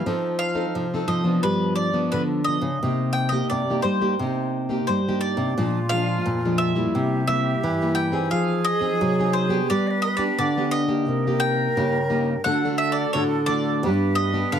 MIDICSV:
0, 0, Header, 1, 5, 480
1, 0, Start_track
1, 0, Key_signature, -3, "minor"
1, 0, Tempo, 688863
1, 43, Time_signature, 4, 2, 24, 8
1, 10170, End_track
2, 0, Start_track
2, 0, Title_t, "Mandolin"
2, 0, Program_c, 0, 25
2, 0, Note_on_c, 0, 77, 82
2, 249, Note_off_c, 0, 77, 0
2, 270, Note_on_c, 0, 77, 86
2, 751, Note_on_c, 0, 75, 73
2, 771, Note_off_c, 0, 77, 0
2, 993, Note_off_c, 0, 75, 0
2, 996, Note_on_c, 0, 71, 77
2, 1220, Note_off_c, 0, 71, 0
2, 1223, Note_on_c, 0, 74, 77
2, 1472, Note_off_c, 0, 74, 0
2, 1475, Note_on_c, 0, 71, 73
2, 1541, Note_off_c, 0, 71, 0
2, 1703, Note_on_c, 0, 75, 79
2, 2179, Note_on_c, 0, 79, 84
2, 2208, Note_off_c, 0, 75, 0
2, 2292, Note_on_c, 0, 75, 72
2, 2315, Note_off_c, 0, 79, 0
2, 2432, Note_off_c, 0, 75, 0
2, 2436, Note_on_c, 0, 74, 71
2, 2662, Note_off_c, 0, 74, 0
2, 2664, Note_on_c, 0, 72, 67
2, 3386, Note_off_c, 0, 72, 0
2, 3394, Note_on_c, 0, 72, 70
2, 3625, Note_off_c, 0, 72, 0
2, 3628, Note_on_c, 0, 74, 72
2, 4107, Note_on_c, 0, 77, 83
2, 4130, Note_off_c, 0, 74, 0
2, 4585, Note_on_c, 0, 76, 80
2, 4610, Note_off_c, 0, 77, 0
2, 5061, Note_off_c, 0, 76, 0
2, 5069, Note_on_c, 0, 76, 83
2, 5538, Note_on_c, 0, 79, 84
2, 5571, Note_off_c, 0, 76, 0
2, 5787, Note_off_c, 0, 79, 0
2, 5790, Note_on_c, 0, 77, 81
2, 6024, Note_on_c, 0, 75, 87
2, 6044, Note_off_c, 0, 77, 0
2, 6485, Note_off_c, 0, 75, 0
2, 6503, Note_on_c, 0, 72, 73
2, 6735, Note_off_c, 0, 72, 0
2, 6757, Note_on_c, 0, 74, 85
2, 6979, Note_off_c, 0, 74, 0
2, 6981, Note_on_c, 0, 75, 81
2, 7082, Note_off_c, 0, 75, 0
2, 7084, Note_on_c, 0, 74, 77
2, 7122, Note_off_c, 0, 74, 0
2, 7236, Note_on_c, 0, 74, 83
2, 7462, Note_off_c, 0, 74, 0
2, 7465, Note_on_c, 0, 75, 88
2, 7942, Note_on_c, 0, 79, 92
2, 7968, Note_off_c, 0, 75, 0
2, 8666, Note_off_c, 0, 79, 0
2, 8669, Note_on_c, 0, 78, 87
2, 8902, Note_off_c, 0, 78, 0
2, 8905, Note_on_c, 0, 76, 85
2, 9003, Note_on_c, 0, 74, 77
2, 9038, Note_off_c, 0, 76, 0
2, 9147, Note_off_c, 0, 74, 0
2, 9149, Note_on_c, 0, 73, 79
2, 9216, Note_off_c, 0, 73, 0
2, 9381, Note_on_c, 0, 74, 86
2, 9844, Note_off_c, 0, 74, 0
2, 9861, Note_on_c, 0, 75, 82
2, 10095, Note_off_c, 0, 75, 0
2, 10119, Note_on_c, 0, 77, 79
2, 10170, Note_off_c, 0, 77, 0
2, 10170, End_track
3, 0, Start_track
3, 0, Title_t, "Flute"
3, 0, Program_c, 1, 73
3, 3880, Note_on_c, 1, 65, 92
3, 4840, Note_on_c, 1, 67, 93
3, 4850, Note_off_c, 1, 65, 0
3, 5752, Note_off_c, 1, 67, 0
3, 5752, Note_on_c, 1, 67, 70
3, 5800, Note_on_c, 1, 68, 104
3, 5810, Note_off_c, 1, 67, 0
3, 6761, Note_on_c, 1, 71, 115
3, 6772, Note_off_c, 1, 68, 0
3, 6880, Note_on_c, 1, 75, 105
3, 6887, Note_off_c, 1, 71, 0
3, 6902, Note_on_c, 1, 71, 115
3, 6909, Note_off_c, 1, 75, 0
3, 6998, Note_on_c, 1, 70, 105
3, 7005, Note_off_c, 1, 71, 0
3, 7020, Note_on_c, 1, 71, 115
3, 7027, Note_off_c, 1, 70, 0
3, 7534, Note_off_c, 1, 71, 0
3, 7718, Note_on_c, 1, 70, 107
3, 8653, Note_off_c, 1, 70, 0
3, 8678, Note_on_c, 1, 69, 103
3, 9613, Note_off_c, 1, 69, 0
3, 9644, Note_on_c, 1, 71, 99
3, 10170, Note_off_c, 1, 71, 0
3, 10170, End_track
4, 0, Start_track
4, 0, Title_t, "Nylon-string guitar"
4, 0, Program_c, 2, 24
4, 43, Note_on_c, 2, 53, 52
4, 43, Note_on_c, 2, 60, 56
4, 46, Note_on_c, 2, 63, 49
4, 49, Note_on_c, 2, 69, 55
4, 364, Note_off_c, 2, 60, 0
4, 366, Note_off_c, 2, 63, 0
4, 368, Note_off_c, 2, 69, 0
4, 382, Note_on_c, 2, 60, 51
4, 384, Note_on_c, 2, 63, 56
4, 386, Note_on_c, 2, 69, 61
4, 499, Note_off_c, 2, 53, 0
4, 528, Note_on_c, 2, 48, 51
4, 594, Note_off_c, 2, 60, 0
4, 595, Note_off_c, 2, 63, 0
4, 596, Note_off_c, 2, 69, 0
4, 652, Note_on_c, 2, 60, 55
4, 658, Note_on_c, 2, 63, 55
4, 659, Note_on_c, 2, 69, 68
4, 850, Note_off_c, 2, 60, 0
4, 851, Note_off_c, 2, 63, 0
4, 853, Note_off_c, 2, 69, 0
4, 864, Note_on_c, 2, 53, 57
4, 868, Note_on_c, 2, 59, 55
4, 871, Note_on_c, 2, 62, 62
4, 982, Note_off_c, 2, 48, 0
4, 1005, Note_on_c, 2, 43, 48
4, 1316, Note_off_c, 2, 53, 0
4, 1316, Note_off_c, 2, 59, 0
4, 1319, Note_off_c, 2, 62, 0
4, 1348, Note_on_c, 2, 53, 56
4, 1349, Note_on_c, 2, 59, 57
4, 1353, Note_on_c, 2, 62, 68
4, 1460, Note_off_c, 2, 43, 0
4, 1490, Note_on_c, 2, 50, 50
4, 1678, Note_off_c, 2, 53, 0
4, 1678, Note_off_c, 2, 59, 0
4, 1680, Note_off_c, 2, 62, 0
4, 1722, Note_on_c, 2, 53, 48
4, 1726, Note_on_c, 2, 59, 50
4, 1728, Note_on_c, 2, 62, 55
4, 1864, Note_off_c, 2, 53, 0
4, 1865, Note_off_c, 2, 59, 0
4, 1867, Note_off_c, 2, 62, 0
4, 1943, Note_off_c, 2, 50, 0
4, 1973, Note_on_c, 2, 58, 54
4, 1975, Note_on_c, 2, 48, 50
4, 1977, Note_on_c, 2, 63, 53
4, 1982, Note_on_c, 2, 67, 64
4, 2290, Note_off_c, 2, 58, 0
4, 2292, Note_off_c, 2, 63, 0
4, 2293, Note_off_c, 2, 67, 0
4, 2313, Note_on_c, 2, 58, 56
4, 2316, Note_on_c, 2, 63, 51
4, 2318, Note_on_c, 2, 67, 66
4, 2425, Note_off_c, 2, 48, 0
4, 2451, Note_on_c, 2, 43, 50
4, 2520, Note_off_c, 2, 58, 0
4, 2522, Note_off_c, 2, 63, 0
4, 2522, Note_off_c, 2, 67, 0
4, 2578, Note_on_c, 2, 58, 54
4, 2581, Note_on_c, 2, 63, 58
4, 2586, Note_on_c, 2, 67, 60
4, 2772, Note_off_c, 2, 58, 0
4, 2773, Note_off_c, 2, 63, 0
4, 2776, Note_off_c, 2, 67, 0
4, 2795, Note_on_c, 2, 58, 52
4, 2798, Note_on_c, 2, 63, 55
4, 2799, Note_on_c, 2, 67, 61
4, 2881, Note_off_c, 2, 58, 0
4, 2882, Note_off_c, 2, 63, 0
4, 2883, Note_off_c, 2, 67, 0
4, 2903, Note_off_c, 2, 43, 0
4, 2938, Note_on_c, 2, 48, 50
4, 2939, Note_on_c, 2, 58, 48
4, 2943, Note_on_c, 2, 63, 45
4, 2945, Note_on_c, 2, 67, 56
4, 3252, Note_off_c, 2, 58, 0
4, 3255, Note_off_c, 2, 63, 0
4, 3255, Note_off_c, 2, 67, 0
4, 3269, Note_on_c, 2, 58, 54
4, 3274, Note_on_c, 2, 63, 60
4, 3280, Note_on_c, 2, 67, 58
4, 3387, Note_off_c, 2, 48, 0
4, 3408, Note_on_c, 2, 43, 51
4, 3478, Note_off_c, 2, 58, 0
4, 3481, Note_off_c, 2, 63, 0
4, 3482, Note_off_c, 2, 67, 0
4, 3539, Note_on_c, 2, 58, 53
4, 3544, Note_on_c, 2, 63, 60
4, 3544, Note_on_c, 2, 67, 63
4, 3854, Note_off_c, 2, 58, 0
4, 3854, Note_off_c, 2, 63, 0
4, 3855, Note_off_c, 2, 67, 0
4, 3862, Note_off_c, 2, 43, 0
4, 3889, Note_on_c, 2, 46, 54
4, 3891, Note_on_c, 2, 53, 57
4, 3893, Note_on_c, 2, 56, 61
4, 3896, Note_on_c, 2, 62, 64
4, 4027, Note_off_c, 2, 53, 0
4, 4029, Note_off_c, 2, 56, 0
4, 4031, Note_off_c, 2, 62, 0
4, 4117, Note_on_c, 2, 53, 54
4, 4120, Note_on_c, 2, 56, 57
4, 4123, Note_on_c, 2, 62, 61
4, 4342, Note_off_c, 2, 46, 0
4, 4363, Note_on_c, 2, 41, 54
4, 4442, Note_off_c, 2, 53, 0
4, 4444, Note_off_c, 2, 56, 0
4, 4444, Note_off_c, 2, 62, 0
4, 4495, Note_on_c, 2, 53, 56
4, 4497, Note_on_c, 2, 56, 61
4, 4500, Note_on_c, 2, 62, 66
4, 4691, Note_off_c, 2, 53, 0
4, 4691, Note_off_c, 2, 56, 0
4, 4693, Note_off_c, 2, 62, 0
4, 4705, Note_on_c, 2, 55, 64
4, 4710, Note_on_c, 2, 58, 52
4, 4712, Note_on_c, 2, 64, 60
4, 4819, Note_off_c, 2, 41, 0
4, 4844, Note_on_c, 2, 48, 49
4, 5036, Note_off_c, 2, 55, 0
4, 5038, Note_off_c, 2, 58, 0
4, 5039, Note_off_c, 2, 64, 0
4, 5070, Note_on_c, 2, 55, 51
4, 5073, Note_on_c, 2, 58, 50
4, 5073, Note_on_c, 2, 64, 58
4, 5299, Note_off_c, 2, 48, 0
4, 5301, Note_off_c, 2, 55, 0
4, 5303, Note_off_c, 2, 58, 0
4, 5303, Note_off_c, 2, 64, 0
4, 5321, Note_on_c, 2, 43, 55
4, 5448, Note_on_c, 2, 55, 64
4, 5450, Note_on_c, 2, 58, 67
4, 5454, Note_on_c, 2, 64, 65
4, 5647, Note_off_c, 2, 55, 0
4, 5648, Note_off_c, 2, 58, 0
4, 5649, Note_off_c, 2, 64, 0
4, 5658, Note_on_c, 2, 60, 59
4, 5662, Note_on_c, 2, 63, 57
4, 5665, Note_on_c, 2, 68, 65
4, 5778, Note_off_c, 2, 43, 0
4, 5802, Note_on_c, 2, 53, 56
4, 5992, Note_off_c, 2, 60, 0
4, 5994, Note_off_c, 2, 63, 0
4, 5995, Note_off_c, 2, 68, 0
4, 6138, Note_on_c, 2, 60, 55
4, 6143, Note_on_c, 2, 63, 55
4, 6145, Note_on_c, 2, 68, 65
4, 6258, Note_off_c, 2, 53, 0
4, 6275, Note_on_c, 2, 48, 53
4, 6352, Note_off_c, 2, 60, 0
4, 6353, Note_off_c, 2, 63, 0
4, 6355, Note_off_c, 2, 68, 0
4, 6406, Note_on_c, 2, 60, 61
4, 6411, Note_on_c, 2, 63, 65
4, 6413, Note_on_c, 2, 68, 66
4, 6606, Note_off_c, 2, 60, 0
4, 6608, Note_off_c, 2, 68, 0
4, 6609, Note_off_c, 2, 63, 0
4, 6614, Note_on_c, 2, 59, 61
4, 6617, Note_on_c, 2, 62, 58
4, 6621, Note_on_c, 2, 67, 70
4, 6735, Note_off_c, 2, 48, 0
4, 6755, Note_on_c, 2, 55, 49
4, 7070, Note_off_c, 2, 59, 0
4, 7072, Note_off_c, 2, 62, 0
4, 7073, Note_off_c, 2, 67, 0
4, 7096, Note_on_c, 2, 59, 62
4, 7097, Note_on_c, 2, 62, 63
4, 7099, Note_on_c, 2, 67, 66
4, 7215, Note_off_c, 2, 55, 0
4, 7234, Note_on_c, 2, 50, 54
4, 7311, Note_off_c, 2, 59, 0
4, 7311, Note_off_c, 2, 62, 0
4, 7312, Note_off_c, 2, 67, 0
4, 7367, Note_on_c, 2, 59, 65
4, 7370, Note_on_c, 2, 62, 61
4, 7374, Note_on_c, 2, 67, 62
4, 7566, Note_off_c, 2, 59, 0
4, 7568, Note_off_c, 2, 62, 0
4, 7570, Note_off_c, 2, 67, 0
4, 7580, Note_on_c, 2, 58, 61
4, 7584, Note_on_c, 2, 63, 55
4, 7586, Note_on_c, 2, 67, 61
4, 7694, Note_off_c, 2, 50, 0
4, 7723, Note_on_c, 2, 48, 54
4, 7845, Note_off_c, 2, 58, 0
4, 7847, Note_off_c, 2, 63, 0
4, 7850, Note_off_c, 2, 67, 0
4, 7852, Note_on_c, 2, 58, 58
4, 7856, Note_on_c, 2, 63, 57
4, 7858, Note_on_c, 2, 67, 62
4, 8169, Note_off_c, 2, 58, 0
4, 8170, Note_off_c, 2, 63, 0
4, 8172, Note_off_c, 2, 67, 0
4, 8179, Note_off_c, 2, 48, 0
4, 8201, Note_on_c, 2, 43, 55
4, 8203, Note_on_c, 2, 58, 62
4, 8203, Note_on_c, 2, 63, 50
4, 8207, Note_on_c, 2, 67, 63
4, 8343, Note_off_c, 2, 58, 0
4, 8344, Note_off_c, 2, 63, 0
4, 8345, Note_off_c, 2, 67, 0
4, 8429, Note_on_c, 2, 58, 57
4, 8433, Note_on_c, 2, 63, 53
4, 8437, Note_on_c, 2, 67, 65
4, 8591, Note_off_c, 2, 58, 0
4, 8592, Note_off_c, 2, 63, 0
4, 8593, Note_off_c, 2, 67, 0
4, 8658, Note_off_c, 2, 43, 0
4, 8678, Note_on_c, 2, 57, 56
4, 8680, Note_on_c, 2, 50, 52
4, 8682, Note_on_c, 2, 62, 51
4, 8685, Note_on_c, 2, 66, 56
4, 8762, Note_off_c, 2, 57, 0
4, 8763, Note_off_c, 2, 62, 0
4, 8765, Note_off_c, 2, 66, 0
4, 8811, Note_on_c, 2, 57, 57
4, 8815, Note_on_c, 2, 62, 62
4, 8818, Note_on_c, 2, 66, 66
4, 9129, Note_off_c, 2, 57, 0
4, 9130, Note_off_c, 2, 62, 0
4, 9132, Note_off_c, 2, 66, 0
4, 9138, Note_off_c, 2, 50, 0
4, 9163, Note_on_c, 2, 45, 56
4, 9164, Note_on_c, 2, 57, 60
4, 9166, Note_on_c, 2, 62, 57
4, 9170, Note_on_c, 2, 66, 62
4, 9305, Note_off_c, 2, 57, 0
4, 9306, Note_off_c, 2, 62, 0
4, 9308, Note_off_c, 2, 66, 0
4, 9391, Note_on_c, 2, 57, 54
4, 9395, Note_on_c, 2, 62, 56
4, 9396, Note_on_c, 2, 66, 64
4, 9618, Note_off_c, 2, 57, 0
4, 9619, Note_off_c, 2, 45, 0
4, 9619, Note_off_c, 2, 62, 0
4, 9620, Note_off_c, 2, 66, 0
4, 9644, Note_on_c, 2, 59, 53
4, 9645, Note_on_c, 2, 55, 59
4, 9647, Note_on_c, 2, 62, 56
4, 9651, Note_on_c, 2, 67, 61
4, 9965, Note_off_c, 2, 59, 0
4, 9966, Note_off_c, 2, 62, 0
4, 9969, Note_off_c, 2, 67, 0
4, 9984, Note_on_c, 2, 59, 56
4, 9987, Note_on_c, 2, 62, 59
4, 9992, Note_on_c, 2, 67, 68
4, 10101, Note_off_c, 2, 55, 0
4, 10124, Note_on_c, 2, 50, 57
4, 10170, Note_off_c, 2, 50, 0
4, 10170, Note_off_c, 2, 59, 0
4, 10170, Note_off_c, 2, 62, 0
4, 10170, Note_off_c, 2, 67, 0
4, 10170, End_track
5, 0, Start_track
5, 0, Title_t, "Nylon-string guitar"
5, 0, Program_c, 3, 24
5, 44, Note_on_c, 3, 53, 91
5, 452, Note_off_c, 3, 53, 0
5, 523, Note_on_c, 3, 53, 78
5, 727, Note_off_c, 3, 53, 0
5, 751, Note_on_c, 3, 53, 85
5, 960, Note_off_c, 3, 53, 0
5, 1002, Note_on_c, 3, 55, 81
5, 1411, Note_off_c, 3, 55, 0
5, 1483, Note_on_c, 3, 50, 77
5, 1789, Note_off_c, 3, 50, 0
5, 1821, Note_on_c, 3, 49, 84
5, 1933, Note_off_c, 3, 49, 0
5, 1969, Note_on_c, 3, 48, 86
5, 2375, Note_off_c, 3, 48, 0
5, 2445, Note_on_c, 3, 48, 76
5, 2649, Note_off_c, 3, 48, 0
5, 2675, Note_on_c, 3, 55, 84
5, 2883, Note_off_c, 3, 55, 0
5, 2922, Note_on_c, 3, 48, 83
5, 3331, Note_off_c, 3, 48, 0
5, 3404, Note_on_c, 3, 55, 77
5, 3710, Note_off_c, 3, 55, 0
5, 3742, Note_on_c, 3, 48, 82
5, 3853, Note_off_c, 3, 48, 0
5, 3885, Note_on_c, 3, 46, 96
5, 4292, Note_off_c, 3, 46, 0
5, 4359, Note_on_c, 3, 46, 80
5, 4769, Note_off_c, 3, 46, 0
5, 4842, Note_on_c, 3, 48, 88
5, 5250, Note_off_c, 3, 48, 0
5, 5320, Note_on_c, 3, 52, 85
5, 5798, Note_off_c, 3, 52, 0
5, 5798, Note_on_c, 3, 53, 101
5, 6208, Note_off_c, 3, 53, 0
5, 6278, Note_on_c, 3, 54, 86
5, 6688, Note_off_c, 3, 54, 0
5, 6760, Note_on_c, 3, 55, 90
5, 7169, Note_off_c, 3, 55, 0
5, 7239, Note_on_c, 3, 50, 84
5, 7722, Note_off_c, 3, 50, 0
5, 7722, Note_on_c, 3, 48, 94
5, 8130, Note_off_c, 3, 48, 0
5, 8202, Note_on_c, 3, 49, 91
5, 8610, Note_off_c, 3, 49, 0
5, 8681, Note_on_c, 3, 50, 94
5, 9090, Note_off_c, 3, 50, 0
5, 9160, Note_on_c, 3, 50, 91
5, 9637, Note_on_c, 3, 43, 100
5, 9642, Note_off_c, 3, 50, 0
5, 10048, Note_off_c, 3, 43, 0
5, 10121, Note_on_c, 3, 50, 86
5, 10170, Note_off_c, 3, 50, 0
5, 10170, End_track
0, 0, End_of_file